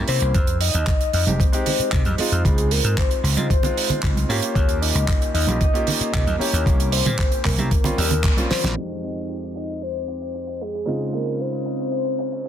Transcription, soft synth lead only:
0.08 C5
0.61 D#5
1.13 D#5
1.40 C5
2.19 G#4
2.45 G#4
2.71 A#4
2.98 C5
4.29 C#5
4.82 D#5
5.34 D#5
6.40 C#5
6.93 C5
7.46 A#4
8.51 C5
9.04 D#5
9.56 D#5
9.82 C5
10.61 G#4
10.88 G#4
11.14 A#4
11.40 C5

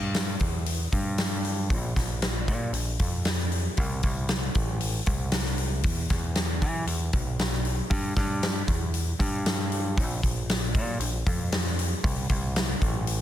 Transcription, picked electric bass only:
Already playing: G2
0.40 E2
0.92 G2
1.70 A#1
1.96 A#1
2.48 A#2
2.73 A#1
3.00 F2
3.78 C2
4.03 C2
4.55 A1
5.07 C2
5.84 E2
6.10 E2
6.62 E3
6.87 E2
7.13 B1
7.90 G2
8.16 G2
8.67 E2
9.19 G2
9.97 A#1
10.23 A#1
10.75 A#2
11.00 A#1
11.27 F2
12.04 C2
12.30 C2
12.82 A1

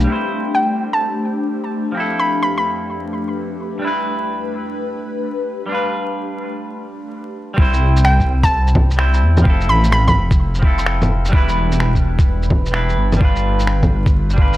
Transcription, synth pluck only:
0.55 G5
0.93 A5
2.19 B5
2.43 B5
2.58 B5
8.05 G5
8.44 A5
9.69 B5
9.92 B5
10.08 B5

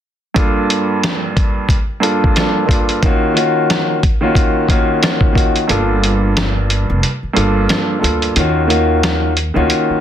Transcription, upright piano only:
0.34 G2 A#3 D4 F4 A4
2.00 G2 A#3 D4 F4 A4
2.36 G2 A#3 D4 F4 A4
2.66 G2 A#3 D4 F4 A4
3.03 D#3 A#3 C#4 F4 F#4
3.34 D#3 A#3 C#4 F4 F#4
4.21 D#3 A#3 C#4 F4 F#4
4.69 D#3 A#3 C#4 F4 F#4
5.33 D#3 A#3 C#4 F4 F#4
5.68 G2 A#3 D4 F4 A4
7.33 G2 A#3 D4 F4 A4
7.70 G2 A#3 D4 A4
7.99 G2 A#3 D4 F4 A4
8.36 D#3 A#3 C#4 F4 F#4
8.68 D#3 A#3 C#4 F4 F#4
9.54 D#3 A#3 C#4 F4 F#4

